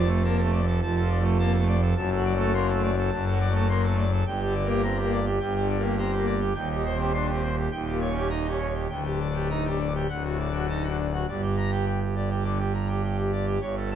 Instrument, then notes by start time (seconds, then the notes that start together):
pipe organ
Already playing: F1 F2
0.05 A3
0.09 A4
0.24 A#3 A5
0.38 A4
0.43 A3
0.52 D5
0.67 A4
0.82 F1 F2 A5
0.96 A4
1.01 F3
1.10 D5
1.19 A3
1.25 A4
1.39 A#3 A5
1.53 A4
1.59 A3
1.68 D5
1.82 A4
1.96 F#1 F#2 A5
2.11 A4
2.16 F#3
2.25 D5
2.35 A3
2.40 A4
2.54 A#3 C6
2.69 A4
2.73 A3
2.83 D5
2.97 A4
3.11 F#1 F#2 A5
3.26 A4
3.31 F#3
3.41 D5
3.50 A3
3.55 A4
3.69 A#3 C6
3.83 A4
3.88 A3
3.98 D5
4.12 A4
4.27 G1 G2 G5
4.41 G4
4.46 D3
4.55 D5
4.65 A#3
4.69 G4
4.83 C4 A#5
4.98 G4
5.02 A#3
5.12 D5
5.26 G4
5.40 G1 G2 G5
5.55 G4
5.60 D3
5.70 D5
5.79 A#3
5.83 G4
5.98 C4 A#5
6.12 G4
6.17 A#3
6.26 D5
6.41 G4
6.55 D#1 D#2 G5
6.70 G4
6.76 D#3
6.85 C5
6.95 C4
7.00 G4
7.14 D4 C6
7.28 G4
7.33 C4
7.43 C5
7.57 G4
7.72 D#1 D#2 G5
7.87 G4
7.91 A#2
8.01 C#5
8.10 C#4
8.16 G4
8.30 D#4 A#5
8.45 G4
8.50 C#4
8.60 C#5
8.74 G4
8.89 D1 D2 G5
9.05 G4
9.10 D3
9.19 D5
9.30 D4
9.35 G4
9.50 D#4 A#5
9.65 G4
9.69 D4
9.80 D5
9.95 G4
10.09 D1 D2 F#5
10.24 F#4
10.30 A2
10.39 D5
10.49 D4
10.54 F#4
10.69 D#4 A5
10.83 F#4
10.89 D4
10.99 D5
11.14 F#4
11.28 G1 G2 D5
11.42 G4
11.57 A#5
11.72 G4
11.86 G5
12.01 G4
12.16 D5
12.30 G4
12.45 D3 D5
12.59 G4
12.74 A#5
12.89 G4
13.03 G5
13.18 G4
13.32 D5
13.47 G4
13.61 G1 G2 C#5
13.77 A4
13.91 A5